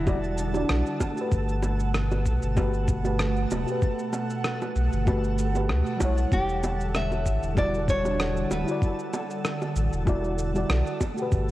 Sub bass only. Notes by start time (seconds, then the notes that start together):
Already playing: E1
0.70 B1
1.32 G1
2.25 B1
2.43 G1
3.51 D1
4.76 B1
4.93 G1
5.70 D2
6.01 B1
6.32 E1
7.26 A1
7.42 E1
8.50 D1
9.76 A1
9.92 E1
10.69 B1
11.32 G1